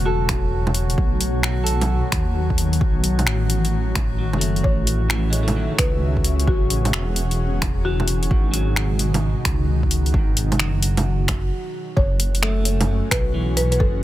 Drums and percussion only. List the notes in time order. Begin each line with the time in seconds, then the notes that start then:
0.29 finger snap, kick, closed hi-hat, low bongo
0.67 low bongo
0.74 closed hi-hat
0.90 closed hi-hat
0.98 kick
1.21 closed hi-hat
1.43 finger snap
1.67 closed hi-hat
1.81 closed hi-hat, low bongo
2.12 finger snap, kick, closed hi-hat
2.50 kick
2.58 closed hi-hat
2.73 closed hi-hat
2.81 kick
3.04 closed hi-hat
3.19 closed hi-hat, low bongo
3.27 finger snap
3.50 closed hi-hat
3.65 closed hi-hat
3.95 finger snap, kick, closed hi-hat, low bongo
4.33 low bongo
4.41 closed hi-hat
4.56 closed hi-hat
4.64 kick
4.87 closed hi-hat
5.10 finger snap
5.33 closed hi-hat
5.48 closed hi-hat, low bongo
5.79 finger snap, kick, closed hi-hat
6.17 kick
6.24 closed hi-hat
6.40 closed hi-hat
6.47 kick
6.70 closed hi-hat
6.85 closed hi-hat, low bongo
6.93 finger snap
7.16 closed hi-hat
7.31 closed hi-hat
7.62 finger snap, kick, closed hi-hat, low bongo
8.00 low bongo
8.08 closed hi-hat
8.23 closed hi-hat
8.31 kick
8.54 closed hi-hat
8.76 finger snap
8.99 closed hi-hat
9.14 closed hi-hat, low bongo
9.45 finger snap, kick, closed hi-hat
9.83 kick
9.91 closed hi-hat
10.06 closed hi-hat
10.14 kick
10.37 closed hi-hat
10.52 closed hi-hat, low bongo
10.60 finger snap
10.82 closed hi-hat
10.97 closed hi-hat, low bongo
11.28 finger snap, kick, closed hi-hat, low bongo
11.97 kick
12.20 closed hi-hat
12.35 closed hi-hat
12.43 finger snap
12.65 closed hi-hat
12.81 closed hi-hat, low bongo
13.11 finger snap, kick, closed hi-hat
13.57 closed hi-hat
13.72 closed hi-hat
13.80 kick